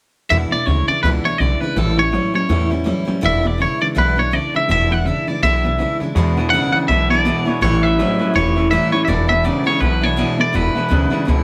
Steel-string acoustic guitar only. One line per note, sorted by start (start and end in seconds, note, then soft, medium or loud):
0.29 0.51 E2 medium
0.29 0.51 B2 medium
0.29 0.52 E3 medium
0.29 0.52 G#3 medium
0.29 0.52 D4 medium
0.29 0.51 E4 medium
0.52 0.64 E3 soft
0.52 0.66 G#3 soft
0.52 0.67 D4 soft
0.52 0.67 E4 medium
0.66 0.88 E3 medium
0.66 0.88 G#3 medium
0.66 0.88 D4 medium
0.66 0.87 E4 medium
0.88 1.04 E3 soft
0.88 1.04 G#3 soft
0.88 1.04 D4 soft
0.88 1.03 E4 medium
1.04 1.25 E2 medium
1.04 1.25 B2 medium
1.04 1.26 E3 medium
1.04 1.26 G#3 medium
1.04 1.24 D4 medium
1.04 1.24 E4 medium
1.25 1.38 E3 soft
1.25 1.39 G#3 soft
1.25 1.40 D4 soft
1.25 1.40 E4 soft
1.39 1.61 E3 medium
1.39 1.62 G#3 medium
1.39 1.62 D4 medium
1.39 1.60 E4 medium
1.61 1.75 E3 soft
1.61 1.77 G#3 soft
1.61 1.77 D4 soft
1.61 1.76 E4 medium
1.76 1.98 A2 medium
1.76 1.98 E3 medium
1.76 1.98 G3 medium
1.76 1.97 C#4 medium
1.76 1.95 E4 medium
1.96 2.12 G3 soft
1.96 2.13 C#4 soft
1.96 2.12 E4 medium
2.12 2.34 E3 medium
2.12 2.34 G3 medium
2.12 2.34 C#4 medium
2.12 2.33 E4 medium
2.34 2.49 G3 soft
2.34 2.49 C#4 soft
2.34 2.49 E4 medium
2.49 2.71 A2 medium
2.49 2.71 E3 medium
2.49 2.71 G3 medium
2.49 2.70 C#4 medium
2.49 2.69 E4 medium
2.70 2.84 G3 soft
2.70 2.85 C#4 soft
2.70 2.86 E4 medium
2.84 3.07 E3 medium
2.84 3.07 G3 medium
2.84 3.06 C#4 medium
2.84 3.04 E4 medium
3.05 3.22 G3 medium
3.05 3.22 C#4 medium
3.05 3.21 E4 medium
3.21 3.43 E2 medium
3.21 3.43 B2 medium
3.21 3.44 E3 medium
3.21 3.43 G#3 medium
3.21 3.42 D4 medium
3.21 3.41 E4 loud
3.42 3.57 E3 soft
3.42 3.58 G#3 soft
3.42 3.59 D4 soft
3.42 3.58 E4 medium
3.58 3.80 E3 medium
3.58 3.80 G#3 medium
3.58 3.79 D4 medium
3.58 3.78 E4 medium
3.79 3.95 E3 soft
3.79 3.94 G#3 soft
3.79 3.95 D4 soft
3.79 3.95 E4 medium
3.95 4.17 E2 medium
3.95 4.17 B2 medium
3.95 4.17 E3 medium
3.95 4.16 G#3 medium
3.95 4.15 D4 medium
3.95 4.14 E4 medium
4.15 4.30 E3 soft
4.15 4.30 G#3 soft
4.15 4.31 D4 medium
4.15 4.31 E4 medium
4.31 4.53 E3 medium
4.31 4.53 G#3 medium
4.31 4.54 D4 medium
4.31 4.53 E4 medium
4.54 4.69 E3 soft
4.54 4.69 G#3 medium
4.54 4.70 D4 soft
4.54 4.69 E4 medium
4.69 4.90 E2 medium
4.69 4.91 B2 medium
4.69 4.91 E3 medium
4.69 4.91 G#3 medium
4.69 4.90 D4 medium
4.69 4.89 E4 medium
4.90 5.04 E3 soft
4.90 5.06 G#3 soft
4.90 5.06 D4 soft
4.90 5.05 E4 soft
5.06 5.27 E3 medium
5.06 5.28 G#3 medium
5.06 5.27 D4 medium
5.06 5.26 E4 medium
5.27 5.42 E3 soft
5.27 5.43 G#3 soft
5.27 5.43 D4 soft
5.27 5.42 E4 medium
5.42 5.64 E2 medium
5.42 5.64 B2 medium
5.42 5.64 E3 medium
5.42 5.64 G#3 medium
5.42 5.63 D4 medium
5.42 5.62 E4 medium
5.63 5.77 E3 soft
5.63 5.79 G#3 soft
5.63 5.79 D4 soft
5.63 5.78 E4 medium
5.78 6.00 E3 medium
5.78 6.01 G#3 medium
5.78 6.00 D4 medium
5.78 5.99 E4 medium
6.00 6.15 E3 soft
6.00 6.16 G#3 medium
6.00 6.16 D4 medium
6.00 6.15 E4 medium
6.16 6.37 E2 medium
6.16 6.37 B2 medium
6.16 6.37 E3 medium
6.16 6.38 G#3 loud
6.16 6.37 D4 medium
6.16 6.36 E4 loud
6.37 6.52 E3 soft
6.37 6.53 G#3 medium
6.37 6.52 D4 medium
6.37 6.52 E4 medium
6.52 6.74 E2 medium
6.52 6.74 B2 medium
6.52 6.74 E3 medium
6.52 6.74 G#3 medium
6.52 6.74 D4 medium
6.52 6.73 E4 medium
6.74 6.88 E3 soft
6.74 6.89 G#3 soft
6.74 6.90 D4 medium
6.74 6.89 E4 medium
6.89 7.10 E3 medium
6.89 7.11 G#3 medium
6.89 7.11 D4 medium
6.89 7.10 E4 medium
7.11 7.25 E3 soft
7.11 7.26 G#3 soft
7.11 7.26 D4 medium
7.11 7.26 E4 medium
7.25 7.47 E2 medium
7.25 7.47 B2 medium
7.25 7.47 E3 medium
7.25 7.46 G#3 medium
7.25 7.45 D4 medium
7.25 7.44 E4 medium
7.45 7.61 E3 soft
7.45 7.62 G#3 soft
7.45 7.62 D4 soft
7.45 7.61 E4 medium
7.61 7.83 A2 medium
7.61 7.83 E3 medium
7.61 7.84 G3 medium
7.61 7.83 C#4 medium
7.61 7.81 E4 loud
7.82 7.99 G3 soft
7.82 7.99 C#4 soft
7.82 7.98 E4 soft
7.99 8.20 A2 medium
7.99 8.20 E3 medium
7.99 8.20 G3 medium
7.99 8.19 C#4 medium
7.99 8.18 E4 medium
8.19 8.34 G3 soft
8.19 8.35 C#4 medium
8.19 8.34 E4 medium
8.34 8.56 E3 medium
8.34 8.56 G3 medium
8.34 8.56 C#4 medium
8.34 8.55 E4 medium
8.56 8.71 G3 soft
8.56 8.71 C#4 soft
8.56 8.71 E4 soft
8.71 8.93 A2 medium
8.71 8.93 E3 medium
8.71 8.93 G3 medium
8.71 8.93 C#4 medium
8.71 8.91 E4 medium
8.92 9.08 G3 soft
8.92 9.08 C#4 medium
8.92 9.07 E4 medium
9.07 9.29 E2 medium
9.07 9.29 B2 medium
9.07 9.29 E3 medium
9.07 9.28 G#3 medium
9.07 9.28 D4 medium
9.07 9.26 E4 medium
9.27 9.43 E3 soft
9.27 9.44 G#3 soft
9.27 9.44 D4 soft
9.27 9.43 E4 medium
9.44 9.66 E2 medium
9.44 9.66 B2 medium
9.44 9.66 E3 medium
9.44 9.65 G#3 medium
9.44 9.64 D4 medium
9.44 9.63 E4 medium
9.64 9.78 E3 soft
9.64 9.79 G#3 soft
9.64 9.80 D4 medium
9.64 9.80 E4 medium
9.79 10.01 E3 medium
9.79 10.02 G#3 medium
9.79 10.01 D4 medium
9.79 10.00 E4 medium
10.01 10.16 E3 soft
10.01 10.17 G#3 soft
10.01 10.17 D4 soft
10.01 10.17 E4 medium
10.16 10.38 E2 medium
10.16 10.39 B2 medium
10.16 10.39 E3 medium
10.16 10.39 G#3 medium
10.16 10.38 D4 medium
10.16 10.37 E4 medium
10.38 10.53 E3 soft
10.38 10.53 G#3 soft
10.38 10.54 D4 medium
10.38 10.54 E4 medium
10.53 10.75 E2 medium
10.53 10.75 B2 medium
10.53 10.75 E3 medium
10.53 10.76 G#3 medium
10.53 10.75 D4 medium
10.53 10.74 E4 medium
10.75 10.89 E3 soft
10.75 10.89 G#3 soft
10.75 10.90 D4 soft
10.75 10.90 E4 medium
10.89 11.11 E2 medium
10.89 11.12 B2 medium
10.89 11.12 E3 medium
10.89 11.11 G#3 medium
10.89 11.10 D4 medium
10.89 11.09 E4 medium
11.10 11.24 E3 soft
11.10 11.25 G#3 medium
11.10 11.27 D4 medium
11.10 11.26 E4 medium
11.25 11.43 E3 medium
11.25 11.43 G#3 medium
11.25 11.43 D4 medium
11.25 11.43 E4 medium